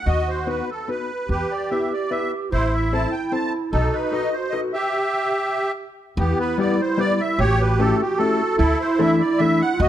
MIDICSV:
0, 0, Header, 1, 5, 480
1, 0, Start_track
1, 0, Key_signature, 1, "minor"
1, 0, Tempo, 407056
1, 81, Time_signature, 3, 2, 24, 8
1, 7762, Tempo, 402145
1, 11708, End_track
2, 0, Start_track
2, 0, Title_t, "Accordion"
2, 0, Program_c, 0, 21
2, 76, Note_on_c, 0, 66, 67
2, 81, Note_on_c, 0, 75, 105
2, 336, Note_on_c, 0, 72, 78
2, 343, Note_off_c, 0, 75, 0
2, 567, Note_off_c, 0, 72, 0
2, 574, Note_on_c, 0, 71, 79
2, 765, Note_off_c, 0, 66, 0
2, 830, Note_off_c, 0, 71, 0
2, 833, Note_on_c, 0, 69, 75
2, 1058, Note_off_c, 0, 69, 0
2, 1062, Note_on_c, 0, 71, 79
2, 1523, Note_off_c, 0, 71, 0
2, 1539, Note_on_c, 0, 67, 71
2, 1541, Note_on_c, 0, 71, 89
2, 1789, Note_on_c, 0, 74, 72
2, 1801, Note_off_c, 0, 71, 0
2, 1999, Note_off_c, 0, 74, 0
2, 2005, Note_on_c, 0, 76, 72
2, 2228, Note_off_c, 0, 67, 0
2, 2274, Note_off_c, 0, 76, 0
2, 2278, Note_on_c, 0, 74, 71
2, 2488, Note_on_c, 0, 76, 92
2, 2507, Note_off_c, 0, 74, 0
2, 2730, Note_off_c, 0, 76, 0
2, 2977, Note_on_c, 0, 72, 110
2, 2981, Note_on_c, 0, 64, 78
2, 3233, Note_on_c, 0, 76, 90
2, 3236, Note_off_c, 0, 72, 0
2, 3460, Note_off_c, 0, 76, 0
2, 3462, Note_on_c, 0, 81, 96
2, 3658, Note_off_c, 0, 64, 0
2, 3678, Note_on_c, 0, 79, 69
2, 3716, Note_off_c, 0, 81, 0
2, 3917, Note_on_c, 0, 81, 92
2, 3920, Note_off_c, 0, 79, 0
2, 4155, Note_off_c, 0, 81, 0
2, 4388, Note_on_c, 0, 63, 81
2, 4389, Note_on_c, 0, 69, 96
2, 4637, Note_on_c, 0, 71, 72
2, 4653, Note_off_c, 0, 69, 0
2, 4861, Note_on_c, 0, 75, 93
2, 4872, Note_off_c, 0, 71, 0
2, 5071, Note_off_c, 0, 63, 0
2, 5106, Note_on_c, 0, 72, 72
2, 5126, Note_off_c, 0, 75, 0
2, 5306, Note_on_c, 0, 75, 97
2, 5347, Note_off_c, 0, 72, 0
2, 5430, Note_off_c, 0, 75, 0
2, 5585, Note_on_c, 0, 76, 105
2, 5586, Note_on_c, 0, 67, 72
2, 6739, Note_off_c, 0, 76, 0
2, 6740, Note_off_c, 0, 67, 0
2, 7291, Note_on_c, 0, 59, 68
2, 7298, Note_on_c, 0, 67, 91
2, 7529, Note_off_c, 0, 67, 0
2, 7546, Note_on_c, 0, 71, 88
2, 7751, Note_off_c, 0, 71, 0
2, 7785, Note_on_c, 0, 74, 95
2, 7976, Note_off_c, 0, 59, 0
2, 8035, Note_on_c, 0, 72, 82
2, 8038, Note_off_c, 0, 74, 0
2, 8253, Note_on_c, 0, 74, 114
2, 8259, Note_off_c, 0, 72, 0
2, 8505, Note_on_c, 0, 76, 100
2, 8512, Note_off_c, 0, 74, 0
2, 8729, Note_on_c, 0, 67, 91
2, 8736, Note_off_c, 0, 76, 0
2, 8738, Note_on_c, 0, 73, 122
2, 8991, Note_on_c, 0, 71, 86
2, 8996, Note_off_c, 0, 73, 0
2, 9208, Note_on_c, 0, 69, 100
2, 9221, Note_off_c, 0, 71, 0
2, 9418, Note_off_c, 0, 67, 0
2, 9470, Note_on_c, 0, 67, 83
2, 9472, Note_off_c, 0, 69, 0
2, 9658, Note_on_c, 0, 69, 103
2, 9675, Note_off_c, 0, 67, 0
2, 10125, Note_off_c, 0, 69, 0
2, 10143, Note_on_c, 0, 69, 121
2, 10148, Note_on_c, 0, 64, 101
2, 10389, Note_off_c, 0, 69, 0
2, 10417, Note_on_c, 0, 72, 93
2, 10649, Note_off_c, 0, 72, 0
2, 10652, Note_on_c, 0, 76, 103
2, 10841, Note_off_c, 0, 64, 0
2, 10890, Note_on_c, 0, 74, 90
2, 10909, Note_off_c, 0, 76, 0
2, 11106, Note_on_c, 0, 76, 118
2, 11125, Note_off_c, 0, 74, 0
2, 11377, Note_off_c, 0, 76, 0
2, 11380, Note_on_c, 0, 78, 118
2, 11608, Note_on_c, 0, 75, 120
2, 11611, Note_off_c, 0, 78, 0
2, 11619, Note_on_c, 0, 66, 90
2, 11708, Note_off_c, 0, 66, 0
2, 11708, Note_off_c, 0, 75, 0
2, 11708, End_track
3, 0, Start_track
3, 0, Title_t, "Clarinet"
3, 0, Program_c, 1, 71
3, 1493, Note_on_c, 1, 67, 98
3, 2961, Note_on_c, 1, 64, 79
3, 2978, Note_off_c, 1, 67, 0
3, 4398, Note_on_c, 1, 66, 76
3, 4416, Note_off_c, 1, 64, 0
3, 5826, Note_off_c, 1, 66, 0
3, 7282, Note_on_c, 1, 64, 86
3, 8728, Note_on_c, 1, 66, 89
3, 8746, Note_off_c, 1, 64, 0
3, 10154, Note_on_c, 1, 64, 104
3, 10172, Note_off_c, 1, 66, 0
3, 11528, Note_on_c, 1, 65, 92
3, 11545, Note_off_c, 1, 64, 0
3, 11623, Note_on_c, 1, 66, 92
3, 11641, Note_off_c, 1, 65, 0
3, 11708, Note_off_c, 1, 66, 0
3, 11708, End_track
4, 0, Start_track
4, 0, Title_t, "Hollow-body jazz guitar"
4, 0, Program_c, 2, 26
4, 552, Note_on_c, 2, 59, 62
4, 554, Note_on_c, 2, 66, 56
4, 558, Note_on_c, 2, 63, 45
4, 560, Note_on_c, 2, 71, 62
4, 810, Note_off_c, 2, 66, 0
4, 811, Note_off_c, 2, 59, 0
4, 813, Note_off_c, 2, 71, 0
4, 815, Note_off_c, 2, 63, 0
4, 1037, Note_on_c, 2, 59, 49
4, 1040, Note_on_c, 2, 63, 40
4, 1049, Note_on_c, 2, 66, 40
4, 1051, Note_on_c, 2, 71, 57
4, 1300, Note_off_c, 2, 63, 0
4, 1300, Note_off_c, 2, 71, 0
4, 1301, Note_off_c, 2, 59, 0
4, 1301, Note_off_c, 2, 66, 0
4, 2020, Note_on_c, 2, 59, 58
4, 2022, Note_on_c, 2, 64, 55
4, 2029, Note_on_c, 2, 67, 51
4, 2033, Note_on_c, 2, 71, 72
4, 2274, Note_off_c, 2, 64, 0
4, 2276, Note_off_c, 2, 59, 0
4, 2276, Note_off_c, 2, 67, 0
4, 2276, Note_off_c, 2, 71, 0
4, 2487, Note_on_c, 2, 59, 47
4, 2489, Note_on_c, 2, 64, 49
4, 2489, Note_on_c, 2, 71, 63
4, 2495, Note_on_c, 2, 67, 40
4, 2747, Note_off_c, 2, 71, 0
4, 2748, Note_off_c, 2, 59, 0
4, 2748, Note_off_c, 2, 64, 0
4, 2751, Note_off_c, 2, 67, 0
4, 3451, Note_on_c, 2, 60, 58
4, 3451, Note_on_c, 2, 64, 57
4, 3455, Note_on_c, 2, 69, 55
4, 3457, Note_on_c, 2, 72, 64
4, 3703, Note_off_c, 2, 64, 0
4, 3704, Note_off_c, 2, 60, 0
4, 3704, Note_off_c, 2, 69, 0
4, 3704, Note_off_c, 2, 72, 0
4, 3913, Note_on_c, 2, 60, 55
4, 3918, Note_on_c, 2, 64, 53
4, 3919, Note_on_c, 2, 72, 64
4, 3920, Note_on_c, 2, 69, 44
4, 4171, Note_off_c, 2, 69, 0
4, 4172, Note_off_c, 2, 60, 0
4, 4172, Note_off_c, 2, 64, 0
4, 4174, Note_off_c, 2, 72, 0
4, 4857, Note_on_c, 2, 63, 60
4, 4865, Note_on_c, 2, 69, 59
4, 4868, Note_on_c, 2, 66, 61
4, 4871, Note_on_c, 2, 71, 79
4, 5117, Note_off_c, 2, 63, 0
4, 5119, Note_off_c, 2, 69, 0
4, 5121, Note_off_c, 2, 71, 0
4, 5123, Note_off_c, 2, 66, 0
4, 5339, Note_on_c, 2, 69, 51
4, 5345, Note_on_c, 2, 71, 55
4, 5346, Note_on_c, 2, 63, 48
4, 5349, Note_on_c, 2, 66, 58
4, 5599, Note_off_c, 2, 69, 0
4, 5599, Note_off_c, 2, 71, 0
4, 5602, Note_off_c, 2, 63, 0
4, 5602, Note_off_c, 2, 66, 0
4, 7757, Note_on_c, 2, 55, 75
4, 7760, Note_on_c, 2, 59, 70
4, 7763, Note_on_c, 2, 67, 70
4, 7764, Note_on_c, 2, 64, 65
4, 7764, Note_on_c, 2, 71, 71
4, 8016, Note_off_c, 2, 67, 0
4, 8017, Note_off_c, 2, 59, 0
4, 8018, Note_off_c, 2, 55, 0
4, 8018, Note_off_c, 2, 64, 0
4, 8020, Note_off_c, 2, 71, 0
4, 8229, Note_on_c, 2, 55, 67
4, 8235, Note_on_c, 2, 64, 68
4, 8236, Note_on_c, 2, 59, 56
4, 8237, Note_on_c, 2, 67, 50
4, 8243, Note_on_c, 2, 71, 75
4, 8494, Note_off_c, 2, 55, 0
4, 8495, Note_off_c, 2, 64, 0
4, 8495, Note_off_c, 2, 67, 0
4, 8495, Note_off_c, 2, 71, 0
4, 8496, Note_off_c, 2, 59, 0
4, 9207, Note_on_c, 2, 57, 75
4, 9211, Note_on_c, 2, 67, 69
4, 9212, Note_on_c, 2, 61, 70
4, 9214, Note_on_c, 2, 69, 77
4, 9215, Note_on_c, 2, 64, 65
4, 9464, Note_off_c, 2, 57, 0
4, 9465, Note_off_c, 2, 67, 0
4, 9466, Note_off_c, 2, 69, 0
4, 9467, Note_off_c, 2, 61, 0
4, 9467, Note_off_c, 2, 64, 0
4, 9685, Note_on_c, 2, 57, 64
4, 9690, Note_on_c, 2, 67, 63
4, 9694, Note_on_c, 2, 61, 65
4, 9698, Note_on_c, 2, 64, 65
4, 9700, Note_on_c, 2, 69, 80
4, 9941, Note_off_c, 2, 57, 0
4, 9941, Note_off_c, 2, 67, 0
4, 9942, Note_off_c, 2, 64, 0
4, 9944, Note_off_c, 2, 61, 0
4, 9944, Note_off_c, 2, 69, 0
4, 10635, Note_on_c, 2, 69, 93
4, 10641, Note_on_c, 2, 52, 88
4, 10641, Note_on_c, 2, 57, 71
4, 10645, Note_on_c, 2, 64, 73
4, 10646, Note_on_c, 2, 62, 75
4, 10893, Note_off_c, 2, 69, 0
4, 10896, Note_off_c, 2, 57, 0
4, 10896, Note_off_c, 2, 64, 0
4, 10897, Note_off_c, 2, 52, 0
4, 10897, Note_off_c, 2, 62, 0
4, 11124, Note_on_c, 2, 52, 67
4, 11130, Note_on_c, 2, 57, 63
4, 11133, Note_on_c, 2, 62, 64
4, 11138, Note_on_c, 2, 64, 72
4, 11141, Note_on_c, 2, 69, 72
4, 11380, Note_off_c, 2, 52, 0
4, 11381, Note_off_c, 2, 57, 0
4, 11381, Note_off_c, 2, 62, 0
4, 11381, Note_off_c, 2, 64, 0
4, 11381, Note_off_c, 2, 69, 0
4, 11708, End_track
5, 0, Start_track
5, 0, Title_t, "Upright bass"
5, 0, Program_c, 3, 32
5, 74, Note_on_c, 3, 39, 80
5, 701, Note_off_c, 3, 39, 0
5, 1522, Note_on_c, 3, 40, 79
5, 1692, Note_off_c, 3, 40, 0
5, 2974, Note_on_c, 3, 33, 85
5, 3592, Note_off_c, 3, 33, 0
5, 4396, Note_on_c, 3, 35, 85
5, 4561, Note_off_c, 3, 35, 0
5, 7278, Note_on_c, 3, 40, 98
5, 7445, Note_off_c, 3, 40, 0
5, 8720, Note_on_c, 3, 33, 95
5, 9348, Note_off_c, 3, 33, 0
5, 10159, Note_on_c, 3, 38, 92
5, 10326, Note_off_c, 3, 38, 0
5, 11599, Note_on_c, 3, 39, 108
5, 11708, Note_off_c, 3, 39, 0
5, 11708, End_track
0, 0, End_of_file